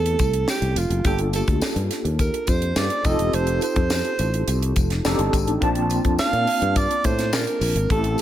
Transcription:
Already playing: E2 A3 C4 E4 G4 A4
0.06 closed hi-hat
0.19 C2, kick, closed hi-hat, tambourine
0.34 closed hi-hat
0.48 G4, snare, tambourine
0.62 C2, closed hi-hat
0.76 F1 F4, closed hi-hat, tambourine
0.90 F#1, closed hi-hat
1.04 G1 A#3 D4 F4 G4 A4, kick, closed hi-hat, tambourine
1.18 closed hi-hat
1.33 A4, closed hi-hat, tambourine
1.48 D2, kick, closed hi-hat
1.61 muted fretless electric bass stroke, snare, tambourine
1.76 G2, closed hi-hat
1.91 snare, closed hi-hat, tambourine
2.05 D#2, closed hi-hat
2.19 A#4, kick, closed hi-hat, tambourine
2.34 closed hi-hat
2.47 F2 C5, kick, closed hi-hat, tambourine
2.62 closed hi-hat
2.76 G2 D5, snare, tambourine
2.90 closed hi-hat
3.04 F1 C4 D#4 F4 G4 A4 D#5, kick, closed hi-hat, tambourine
3.19 E1, closed hi-hat
3.33 F1 C5, closed hi-hat
3.47 closed hi-hat
3.61 C5, closed hi-hat, tambourine
3.76 F2, kick, closed hi-hat
3.90 snare, tambourine
4.05 closed hi-hat
4.19 A1, closed hi-hat, tambourine
4.34 closed hi-hat
4.48 C2, closed hi-hat, tambourine
4.62 closed hi-hat
4.76 F1, kick, closed hi-hat, tambourine
4.90 snare, closed hi-hat
5.05 F1 C4 D4 D#4 G4 A4, snare, tambourine
5.19 G1, closed hi-hat
5.33 G#1, kick, closed hi-hat, tambourine
5.48 A1, closed hi-hat
5.61 A#1 A#3 C4 D4 F4 A5, kick, closed hi-hat
5.75 closed hi-hat
5.90 closed hi-hat, tambourine
6.05 F2, kick, closed hi-hat
6.18 F5, muted fretless electric bass stroke, snare, tambourine
6.33 A#2, closed hi-hat
6.47 open hi-hat
6.62 G2, closed hi-hat
6.76 D5, kick, closed hi-hat, tambourine
6.91 closed hi-hat
7.04 A2 C5, kick, closed hi-hat, tambourine
7.19 snare, closed hi-hat
7.33 A#2 A#4, snare, tambourine
7.47 closed hi-hat
7.61 A#1, open hi-hat, tambourine
7.75 G#1, closed hi-hat
7.89 A1 A3 C4 E4 G4 A4, kick, closed hi-hat
8.04 closed hi-hat
8.18 tambourine

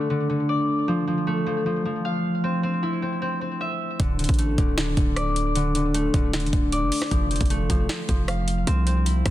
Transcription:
Already playing: A3 C4 D5
0.10 D3
0.29 D3
0.49 D5
0.88 F3
1.07 F3
1.27 A3
1.46 F3
1.66 F3
1.85 F3
2.05 F5
2.44 C4
2.63 C4
2.83 E4
3.02 C4
3.22 C4
3.41 C4
3.61 E5
4.00 D1 D3, kick, closed hi-hat
4.19 D3, closed hi-hat
4.24 closed hi-hat
4.29 A1, kick, closed hi-hat
4.34 closed hi-hat
4.39 A3, closed hi-hat
4.58 D1 D3, kick, closed hi-hat
4.78 D3, snare, closed hi-hat
4.97 D1 D3, kick, closed hi-hat
5.16 D5, cross-stick, closed hi-hat
5.36 closed hi-hat
5.55 D3, closed hi-hat
5.75 D3, closed hi-hat
5.94 A3, closed hi-hat
6.14 D1 D3, kick, closed hi-hat
6.33 D3, snare, closed hi-hat
6.40 E1, closed hi-hat
6.46 closed hi-hat
6.53 D1 D3, kick, closed hi-hat
6.72 D5, closed hi-hat
6.82 F1
6.92 open hi-hat
7.02 cross-stick, snare
7.11 F1 F3, kick, closed hi-hat
7.31 F3, closed hi-hat
7.36 closed hi-hat
7.41 F1, kick, closed hi-hat
7.45 closed hi-hat
7.50 A3, closed hi-hat
7.70 F1 F3, kick, closed hi-hat
7.89 F3, snare, closed hi-hat
8.09 F1 F3, kick, closed hi-hat
8.28 F5, cross-stick, closed hi-hat
8.48 closed hi-hat
8.67 C2 C4, closed hi-hat
8.87 C4, closed hi-hat
9.06 E4, closed hi-hat
9.26 C2 C4, kick, cross-stick, closed hi-hat

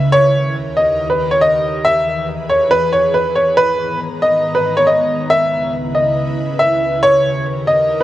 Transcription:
Already playing: C#2 C#3 E4 B4
0.12 D#2 D#3 G4 A#4 C#5
0.77 D#5
1.10 B4
1.31 C#5
1.41 D#5
1.84 E2 E3 G#4 B4 E5
2.49 C#5
2.71 B4
2.92 C#5
3.14 B4
3.36 C#5
3.57 G#2 D#3 B3 B4 A#5
4.22 D#5
4.55 B4
4.77 C#5
4.87 D#5
5.30 C#2 C#3 E4 B4 E5
5.95 D#5
6.59 E5
7.02 D#2 D#3 G4 A#4 C#5
7.67 D#5
8.00 B4

